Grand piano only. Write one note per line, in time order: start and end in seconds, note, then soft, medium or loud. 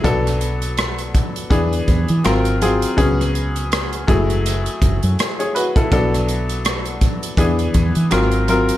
0.04 1.20 F#3 medium
0.04 1.20 B3 medium
0.04 1.20 D4 medium
0.04 1.21 A4 medium
1.50 2.24 E3 medium
1.50 2.24 B3 medium
1.50 2.24 D4 medium
1.50 2.25 G#4 medium
2.24 2.55 F#3 medium
2.24 2.55 C4 medium
2.24 2.55 F4 medium
2.24 2.55 A#4 medium
2.62 2.91 F#3 medium
2.62 2.92 C4 medium
2.62 2.92 F4 medium
2.62 2.92 G#4 medium
2.97 4.06 F#3 medium
2.97 4.07 B3 medium
2.97 4.08 C#4 medium
2.97 4.07 G#4 loud
4.07 5.26 F#3 medium
4.07 5.26 A3 medium
4.07 4.81 E4 medium
4.07 4.82 G#4 medium
5.39 5.54 G#4 medium
5.39 5.54 C#5 medium
5.55 5.75 F#4 medium
5.55 5.75 B4 medium
5.77 6.11 E4 medium
5.77 5.91 A4 medium
5.92 7.08 F#3 medium
5.92 7.08 B3 medium
5.92 7.08 D4 medium
5.92 7.08 A4 medium
7.38 8.11 E3 medium
7.38 8.11 B3 medium
7.38 8.11 D4 medium
7.38 8.12 G#4 medium
8.11 8.41 F#3 medium
8.11 8.42 C4 medium
8.11 8.42 F4 medium
8.11 8.42 A#4 medium
8.48 8.78 F#3 medium
8.48 8.78 C4 medium
8.48 8.78 F4 medium
8.48 8.78 A#4 medium